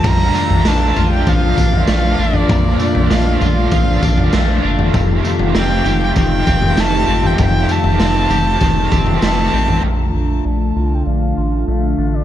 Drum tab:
CC |x---------------|----------------|----------------|----------------|
TB |x-x-x-x-x-x-x---|x-x-x-x-x-x-x---|x-x-x-x-x-x-x---|x-x-x-x-x-x-x---|
SD |----o-------o---|----o-------o---|----o-------o---|----o-------o---|
FT |o--o--o----o---o|o--o--o----o---o|o--o--o----o---o|o--o--o----o---o|
BD |o-------o-o-----|o-------o-o-----|o-------o-o-----|o-------o-o-----|

CC |----------------|
TB |----------------|
SD |----------------|
FT |----------------|
BD |----------------|